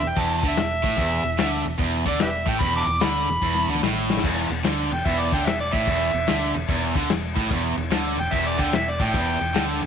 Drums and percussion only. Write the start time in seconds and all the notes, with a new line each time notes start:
0.02 open hi-hat
0.16 kick, open hi-hat
0.43 kick, open hi-hat
0.57 snare, open hi-hat
0.83 kick, open hi-hat
0.97 kick, open hi-hat
1.24 open hi-hat
1.38 snare, open hi-hat
1.65 open hi-hat
1.79 kick, open hi-hat
2.06 kick, open hi-hat
2.19 snare, open hi-hat
2.46 kick, open hi-hat
2.61 kick, open hi-hat
2.87 open hi-hat
3.01 snare, open hi-hat
3.28 open hi-hat
3.42 kick
3.55 high tom
3.75 mid tom
3.83 snare
4.10 snare
4.17 snare
4.24 kick, crash
4.50 crash
4.64 snare, crash
4.91 crash
5.05 kick, crash
5.32 kick, crash
5.47 snare, crash
5.73 kick, crash
5.87 kick, crash
6.14 crash
6.27 snare, crash
6.54 crash
6.68 kick, crash
6.95 kick, crash
7.09 snare, crash
7.37 kick, crash
7.51 kick, crash
7.77 crash
7.91 snare, crash
8.18 crash
8.32 kick, crash
8.59 kick, crash
8.73 snare, crash
8.99 kick, crash
9.14 kick, crash
9.41 crash
9.55 snare, crash
9.82 crash